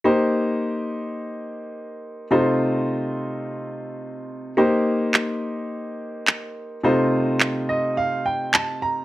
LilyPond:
<<
  \new Staff \with { instrumentName = "Grand piano" } { \time 4/4 \key c \dorian \tempo 4 = 106 << { r1 | r1 | r1 | r4. ees''8 f''8 g''8 a''8 bes''8 | } \\ { <bes ees' g' c''>1 | <c a ees' f' c''>1 | <bes ees' g' c''>1 | <c a ees' f' c''>1 | } >> }
  \new DrumStaff \with { instrumentName = "Drums" } \drummode { \time 4/4 r4 r4 r4 r4 | r4 r4 r4 r4 | r4 hc4 r4 hc4 | r4 hc4 r4 hc4 | }
>>